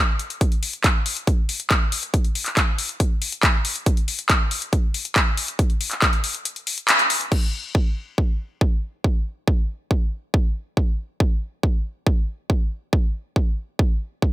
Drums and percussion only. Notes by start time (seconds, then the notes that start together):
0.19 closed hi-hat
0.30 closed hi-hat
0.41 kick, closed hi-hat
0.52 closed hi-hat
0.63 open hi-hat
0.73 closed hi-hat
0.84 kick, clap, closed hi-hat
1.06 open hi-hat
1.17 closed hi-hat
1.27 kick, closed hi-hat
1.49 open hi-hat
1.60 closed hi-hat
1.71 kick, clap, closed hi-hat
1.92 open hi-hat
2.03 closed hi-hat
2.14 kick, closed hi-hat
2.25 closed hi-hat
2.35 open hi-hat
2.46 clap, closed hi-hat
2.57 kick, clap, closed hi-hat
2.78 open hi-hat
2.89 closed hi-hat
3.00 kick, closed hi-hat
3.22 open hi-hat
3.32 closed hi-hat
3.43 kick, clap, closed hi-hat
3.65 open hi-hat
3.76 closed hi-hat
3.86 kick, closed hi-hat
3.97 closed hi-hat
4.08 open hi-hat
4.19 closed hi-hat
4.29 kick, clap, closed hi-hat
4.51 open hi-hat
4.62 closed hi-hat
4.73 kick, closed hi-hat
4.94 open hi-hat
5.05 closed hi-hat
5.16 kick, clap, closed hi-hat
5.37 open hi-hat
5.48 closed hi-hat
5.59 kick, closed hi-hat
5.70 closed hi-hat
5.81 open hi-hat
5.91 clap, closed hi-hat
6.02 kick, clap, closed hi-hat
6.13 closed hi-hat
6.24 open hi-hat
6.35 closed hi-hat
6.45 closed hi-hat
6.56 closed hi-hat
6.67 open hi-hat
6.78 closed hi-hat
6.88 clap, closed hi-hat
6.99 closed hi-hat
7.10 open hi-hat
7.21 closed hi-hat
7.32 kick, crash
7.75 kick
8.18 kick
8.61 kick
9.04 kick
9.48 kick
9.91 kick
10.34 kick
10.77 kick
11.20 kick
11.63 kick
12.07 kick
12.50 kick
12.93 kick
13.36 kick
13.79 kick
14.22 kick